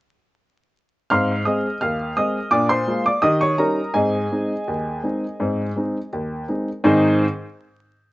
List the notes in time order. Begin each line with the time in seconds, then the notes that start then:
1.10 G#2 C4 F5 C6 F6
1.45 G#3 C4 G#4 D#5 D#6
1.81 D#2 F5 F6
2.17 G#3 C4 G#4 D#5 D#6
2.51 A#2 D4 D5 D6
2.69 C5 C6
2.87 G#3 A#3 F4
3.06 D5 D6
3.22 D#3 G4 D#5 D#6
3.41 C#5 C#6
3.58 G3 C#4 D#4 A#4 A#5
3.94 G#2 C4 G#4 D#5 G#5
4.32 G#3 C4 D#4
4.68 D#2
5.03 G#3 C4 D#4
5.40 G#2 C4
5.76 G#3 C4 D#4
6.13 D#2
6.48 G#3 C4 D#4
6.84 G#2 D#3 C4 D#4 G#4 C5